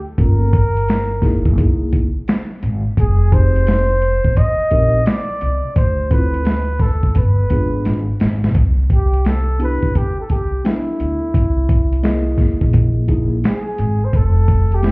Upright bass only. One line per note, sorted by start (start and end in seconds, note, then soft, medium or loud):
0.18 1.42 G1 loud
1.46 1.55 F1 medium
1.58 2.14 C2 medium
2.63 2.81 G#1 loud
2.98 4.21 F1 medium
4.25 4.34 G1 medium
4.72 5.00 A#1 medium
5.42 5.60 C2 loud
5.76 7.00 D2 loud
7.04 7.13 C2 medium
7.16 7.44 G1 loud
7.51 7.79 G#1 medium
7.86 8.04 G#1 medium
8.21 8.39 G#1 loud
8.44 8.53 B1 medium
8.55 9.79 C2 loud
9.83 9.92 B1 medium
10.30 10.58 C2 medium
11.00 11.18 D2 medium
11.34 12.58 C2 medium
12.62 13.40 A#1 medium
13.79 13.97 G#1 loud
14.13 14.92 F1 medium